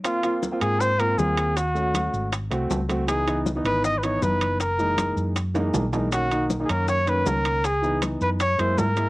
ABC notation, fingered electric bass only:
X:1
M:4/4
L:1/8
Q:1/4=158
K:Dblyd
V:1 name="Fingered electric bass" clef=bass
z3 A,,3 E,,2- | E,,3 A,,,2 C,, D,,2- | D,,3 A,,,3 _G,,,2- | _G,,,3 _G,,3 _C,,2- |
_C,,3 ^F,,3 D,,2- | D,,3 _G,,2 G,, A,,2 |]